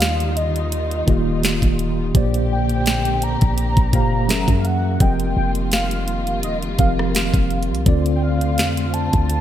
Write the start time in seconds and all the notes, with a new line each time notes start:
Already playing: D#2 D#3 G3 A#3 D#4 F4 G4 D5 F5
0.00 snare, closed hi-hat
0.20 closed hi-hat
0.36 D#5, closed hi-hat
0.56 closed hi-hat
0.72 closed hi-hat
0.91 closed hi-hat
1.07 D#1 D#3 A#3 F4 G4 D#5, kick, closed hi-hat
1.43 snare, closed hi-hat
1.62 D#1, kick, closed hi-hat
1.79 closed hi-hat
2.14 A#1 A#2 D3 A#3 C4 G4 C5 D5, kick, closed hi-hat
2.34 closed hi-hat
2.52 G5
2.69 closed hi-hat
2.86 snare, closed hi-hat
3.05 closed hi-hat
3.22 A#5, closed hi-hat
3.41 A#1, kick, closed hi-hat
3.58 closed hi-hat
3.77 A#1, kick, closed hi-hat
3.93 F#1 A#2 A#3 G4 C5 F5, kick, closed hi-hat
4.28 E3 F#3 G#3 C#4 F#4 G#4 A#4 E5, snare, closed hi-hat
4.48 F#2, kick, closed hi-hat
4.59 F5
4.65 F#5, closed hi-hat
4.99 F1 D#3 F3 G3 C4 F4 G4 A#4 D#5 G5, kick, closed hi-hat
5.20 closed hi-hat
5.37 F1 G5
5.55 closed hi-hat
5.72 F5, snare, closed hi-hat
5.91 closed hi-hat
6.08 closed hi-hat
6.27 closed hi-hat
6.43 D#1 D#5, closed hi-hat
6.62 F1, closed hi-hat
6.78 F1 F3 C4 G4 A#4 F5, kick, closed hi-hat
6.99 cross-stick
7.15 F5, snare, closed hi-hat
7.34 F1, kick, closed hi-hat
7.50 closed hi-hat
7.63 closed hi-hat
7.70 C2
7.75 closed hi-hat
7.85 D2 D3 A3 C4 F4 A4 D5, kick, closed hi-hat
8.06 closed hi-hat
8.16 G5
8.22 F5
8.41 closed hi-hat
8.58 F2, snare, closed hi-hat
8.77 closed hi-hat
8.93 A5, closed hi-hat
9.13 D2, kick, closed hi-hat
9.30 closed hi-hat